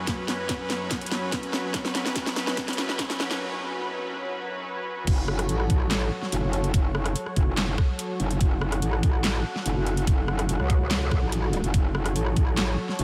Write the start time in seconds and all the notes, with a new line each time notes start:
Already playing: F#2 F#3 C#4 B4
0.07 kick, snare, closed hi-hat
0.28 snare, closed hi-hat
0.49 kick, snare, closed hi-hat
0.70 snare, closed hi-hat
0.91 kick, snare, closed hi-hat
1.01 closed hi-hat
1.06 closed hi-hat
1.11 snare, closed hi-hat
1.32 kick, snare, closed hi-hat
1.43 closed hi-hat
1.53 snare
1.74 kick, snare, closed hi-hat
1.85 snare
1.95 snare, closed hi-hat
2.06 snare
2.16 kick, snare, closed hi-hat
2.26 snare
2.36 snare, closed hi-hat
2.47 snare
2.57 kick, snare, closed hi-hat
2.68 snare, closed hi-hat
2.73 closed hi-hat
2.78 snare, closed hi-hat
2.89 snare
2.99 kick, snare, closed hi-hat
3.10 snare, closed hi-hat
3.20 snare
3.31 snare
5.07 F#1 F#3 F#4 A4 C#5, kick, closed hi-hat, crash
5.28 cross-stick
5.39 cross-stick, closed hi-hat
5.49 A1, closed hi-hat
5.60 cross-stick
5.70 kick, closed hi-hat
5.91 snare, clap, closed hi-hat
6.22 snare
6.32 F#1, closed hi-hat
6.43 F#1
6.53 closed hi-hat
6.64 closed hi-hat
6.74 F#1, kick, closed hi-hat
6.95 cross-stick
7.06 cross-stick, closed hi-hat
7.16 closed hi-hat
7.26 cross-stick
7.36 F#1, kick, closed hi-hat
7.57 snare, clap, closed hi-hat
7.78 kick, cross-stick
7.99 closed hi-hat
8.20 F#1, closed hi-hat
8.31 closed hi-hat
8.41 F#1 F#5, kick, closed hi-hat
8.61 cross-stick
8.72 cross-stick, closed hi-hat
8.82 A1, closed hi-hat
8.93 cross-stick
9.03 kick, closed hi-hat
9.24 snare, clap, closed hi-hat
9.56 snare
9.66 F#1, closed hi-hat
9.76 F#1
9.87 closed hi-hat
9.97 closed hi-hat
10.07 F#1, kick, closed hi-hat
10.28 cross-stick
10.39 cross-stick, closed hi-hat
10.49 F#1, closed hi-hat
10.60 C#2, cross-stick
10.70 kick, closed hi-hat
10.81 C#2
10.91 snare, clap, closed hi-hat
11.11 kick, cross-stick
11.22 A1
11.32 closed hi-hat
11.53 closed hi-hat
11.64 F#1, closed hi-hat
11.74 F#1 C#5, kick, closed hi-hat
11.95 cross-stick
12.06 cross-stick, closed hi-hat
12.16 A1, closed hi-hat
12.26 cross-stick
12.36 kick, closed hi-hat
12.57 snare, clap, closed hi-hat
12.89 snare
12.99 F#1, closed hi-hat